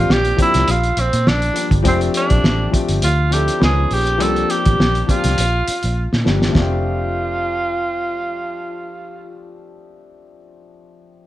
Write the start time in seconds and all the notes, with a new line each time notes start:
Already playing: F3 A#3 C4 D4 F4 G4
0.09 A#1 G4, snare
0.25 closed hi-hat
0.36 F3 A#3 C4 D4 G4, kick, closed hi-hat
0.42 E4
0.54 C2, snare, closed hi-hat
0.68 A#1 F4, closed hi-hat
0.84 closed hi-hat
0.97 A#1 C4, closed hi-hat
1.13 A#2, closed hi-hat
1.27 A#1 D4, snare
1.42 closed hi-hat
1.53 F3 G3 A#3 D4 G4, closed hi-hat
1.71 G1, kick, closed hi-hat
1.83 F1 F3 G#3 C4 D4 G4, kick, closed hi-hat
1.88 A3 C4
2.01 closed hi-hat
2.14 D4, closed hi-hat
2.30 A#1, kick, closed hi-hat
2.44 A1, snare
2.70 F3 A3 C4 D4 G4, kick, closed hi-hat
2.89 G1, closed hi-hat
3.02 D2 F4, closed hi-hat
3.30 F3 C4 D4 E4 G4, closed hi-hat
3.34 A4
3.48 closed hi-hat
3.59 C#2 F3 B3 C#4 D#4 G#4, snare
3.64 G#4
3.91 A#1 G4, open hi-hat
4.07 closed hi-hat
4.18 C2 F3 A#3 C4 D4 G4, closed hi-hat
4.22 A4
4.36 closed hi-hat
4.50 G4, closed hi-hat
4.66 A1, kick, closed hi-hat
4.79 A#1, snare
4.95 closed hi-hat
5.04 F3 A#3 G4
5.09 C4 D4 F4 G4, kick, closed hi-hat
5.24 C2, snare, closed hi-hat
5.38 A#1, closed hi-hat
5.68 muted fingered electric bass stroke, closed hi-hat
5.83 A#1, closed hi-hat
6.13 A#2, snare
6.24 G1 F3 G3 A#3 D4 G4, snare
6.42 snare
6.48 F3 A3
6.55 F1 C4 D4 F4, kick, snare
6.62 G4